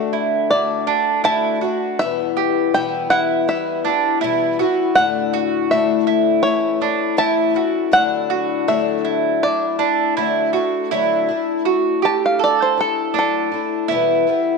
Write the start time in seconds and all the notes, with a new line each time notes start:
Already playing: D3 A3 D4 F#4 E5
0.13 E4
0.50 D3 A3 D4 F#4 D5
0.87 A3 D4 F#4
1.24 D3 A3 D4 E4 F#4 A5
1.61 A3 D4 F#4
1.99 E2 B2 E3 G3 B3 E4 E5
2.37 G4
2.74 E2 B2 E3 G3 B3 E4 G5
3.10 E4 F#5
3.48 E3 G3 B3 E4 E5
3.85 E3 G3 B3 D4 E4
4.21 E2 B2 E3 G3 B3 E4
4.59 E3 G3 B3 E4 F#4
4.95 A2 D3 A3 D4 E4 F#5
5.34 F#4
5.71 A2 D3 A3 D4 E4 E5
6.07 E4
6.43 E3 A3 C#4 C#5
6.48 E4
6.81 A3 C#4 D4 E4
7.17 A2 E3 A3 C#4 E4 A5
7.54 A3 C#4 E4 F#4
7.92 D3 F#3 A3 D4 E4 F#5
8.30 F#4
8.68 D3 F#3 A3 D4 E4 E5
9.05 E4
9.43 F#3 A3 D4 E4 D5
9.79 A3 D4 E4
10.17 D3 F#3 A3 D4 E4
10.53 A3 D4 E4 F#4
10.91 D3 F#3 A3 D4 E4
11.28 A3 D4 E4
11.65 F#4
12.02 A3 D4 E4 G4 A5
12.26 F5
12.39 A4
12.44 D5
12.62 C5
12.78 A3 D4 E4 A4
13.14 F#3 A3 D4 E4
13.19 A4
13.52 A3 D4 E4
13.88 E2 B2 E3 G3 B3 E4
14.27 E3 G3 B3 E4